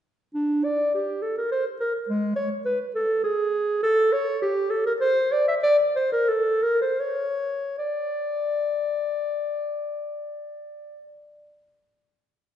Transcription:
0.34 0.66 D4 medium
0.64 0.94 D5 medium
0.94 1.24 G4 medium
1.22 1.36 A4 medium
1.37 1.51 A#4 medium
1.52 1.64 C5 medium
1.80 1.93 A#4 medium
2.09 2.36 G#3 medium
2.36 2.50 C#5 medium
2.66 2.79 B4 medium
2.95 3.24 A4 medium
3.24 3.82 G#4 medium
3.83 4.14 A4 loud
4.13 4.42 C#5 loud
4.42 4.72 G4 medium
4.70 4.86 A4 medium
4.86 4.93 A#4 medium
5.01 5.34 C5 loud
5.32 5.47 D5 medium
5.48 5.55 E5 medium
5.63 5.77 D5 loud
5.96 6.12 C5 medium
6.12 6.30 A#4 medium
6.29 6.64 A4 medium
6.63 6.81 A#4 medium
6.82 7.01 C5 medium
7.00 7.77 C#5 medium
7.78 11.07 D5 medium

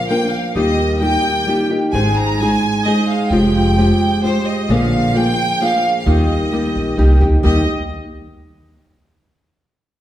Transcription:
0.07 0.55 F3 medium
0.07 0.56 A#3 medium
0.07 0.56 D4 medium
0.07 0.56 A#4 medium
0.07 0.30 G5 medium
0.30 0.54 F5 medium
0.54 1.15 D#2 medium
0.54 1.93 D#3 medium
0.54 1.00 G3 medium
0.54 1.00 A#3 medium
0.54 1.01 D#4 medium
0.54 1.01 G4 medium
0.54 0.97 D#5 medium
1.00 1.46 G3 medium
1.00 1.47 A#3 medium
1.00 1.47 D#4 medium
1.00 1.48 G4 medium
1.00 1.66 G5 loud
1.47 1.71 G3 medium
1.47 1.70 A#3 medium
1.47 1.69 D#4 medium
1.47 1.69 G4 medium
1.70 1.94 A#3 soft
1.70 1.93 D#4 medium
1.70 1.94 G4 medium
1.93 2.53 G#1 medium
1.93 2.40 G#2 medium
1.93 2.40 D#3 medium
1.93 2.40 G#3 medium
1.93 2.41 C4 medium
1.93 2.40 D#4 medium
1.93 2.42 G#4 medium
1.93 2.15 G#5 medium
2.18 2.40 A#5 loud
2.40 2.85 G#3 medium
2.40 2.86 C4 medium
2.40 2.85 D#4 medium
2.40 2.87 G#4 medium
2.40 2.86 G#5 loud
2.85 3.32 G#3 medium
2.85 3.31 C4 medium
2.85 3.32 D#4 medium
2.85 3.32 G#4 medium
2.85 3.09 D#5 loud
3.09 3.32 F5 medium
3.30 3.90 F1 loud
3.30 3.82 F3 medium
3.30 3.78 G#3 medium
3.30 3.77 C4 medium
3.30 3.79 F4 medium
3.30 3.78 G4 medium
3.30 4.23 G5 medium
3.78 4.23 G#3 medium
3.78 4.23 C4 medium
3.78 4.24 F4 medium
3.78 4.24 G4 medium
4.24 4.69 G#3 medium
4.24 4.69 C4 medium
4.24 4.70 F4 medium
4.24 4.70 G4 medium
4.24 4.45 C5 loud
4.46 4.69 D#5 medium
4.68 5.28 A#1 medium
4.68 5.15 A#2 medium
4.68 5.15 D3 medium
4.68 5.14 F3 medium
4.68 5.15 A#3 medium
4.68 5.15 D4 medium
4.68 5.15 G#4 medium
4.68 5.15 F5 medium
5.15 5.60 F3 medium
5.15 5.61 A#3 medium
5.15 5.60 D4 medium
5.15 5.61 G#4 medium
5.15 5.61 G5 loud
5.61 6.06 F3 medium
5.61 6.07 A#3 medium
5.61 6.07 D4 medium
5.61 6.07 G#4 medium
5.61 5.99 F5 loud
6.00 6.06 F5 medium
6.06 6.51 D#2 medium
6.06 7.43 D#3 medium
6.06 6.52 G3 medium
6.06 6.53 A#3 medium
6.06 6.53 D#4 medium
6.06 6.53 G4 medium
6.06 7.22 D#5 medium
6.52 6.97 G3 medium
6.52 6.98 A#3 medium
6.52 6.98 D#4 medium
6.52 6.99 G4 medium
6.76 6.96 A#1 medium
6.97 7.19 C2 medium
6.97 7.21 G3 medium
6.97 7.22 A#3 medium
6.97 7.21 D#4 medium
6.97 7.20 G4 medium
7.21 7.41 D2 medium
7.21 7.43 A#3 soft
7.21 7.43 D#4 medium
7.21 7.44 G4 medium
7.43 7.66 D#2 medium
7.43 7.62 D#3 medium
7.43 7.62 G3 medium
7.43 7.63 A#3 medium
7.43 7.63 D#4 loud
7.43 7.63 G4 medium
7.43 7.66 D#5 medium

